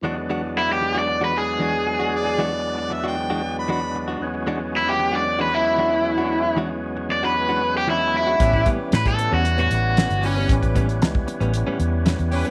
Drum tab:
HH |----------------|----------------|----------------|----------------|
SD |----------------|----------------|----------------|----------------|
BD |----------------|----------------|----------------|----------------|

HH |x-x-xxx-xxx-xxo-|xxxxx-xxx-x-xxox|
SD |----oo------o---|----o-------o---|
BD |ooo--o----------|ooo--o----------|